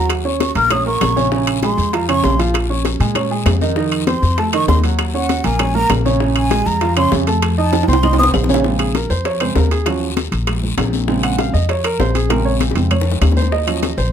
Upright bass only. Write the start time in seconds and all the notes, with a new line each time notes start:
Already playing: D#2
0.55 A#1
1.01 A#1
1.78 F2
2.23 A#1
3.00 A#2
3.46 F2
4.22 F2
4.68 D#2
5.44 A#1
5.90 A#1
6.66 F2
7.12 F2
7.88 C2
8.34 A#1
9.10 F2
9.56 D#2
10.32 A#1
10.77 A#1
11.54 F2
11.99 A#1
12.75 F2
13.21 D#2
13.97 A#1